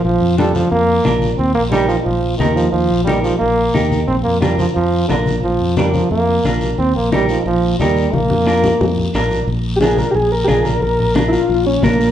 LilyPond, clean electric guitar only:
\new Staff \with { instrumentName = "Clean electric guitar" } { \time 4/4 \key bes \major \tempo 4 = 178 r4 <d' f' a'>8 r4. <d' f' bes'>8 r8 | r4 <ees' g' bes'>8 r4. <ees' g' bes'>8 r8 | r4 <ees' g' bes'>8 r4. <ees' g' bes'>8 r8 | r4 <d' f' bes'>8 r4. <d' f' bes'>8 r8 |
r4 <d' f' bes'>8 r4. <d' f' bes'>8 r8 | r4 <ees' g' bes'>8 r4. <ees' g' bes'>8 r8 | r4 <d' f' bes'>8 r4. <d' f' bes'>8 r8 | r4 <d' f' bes'>8 r4. <d' f' bes'>8 r8 |
r4 <d' f' bes'>8 r4. <d' f' bes'>8 r8 | }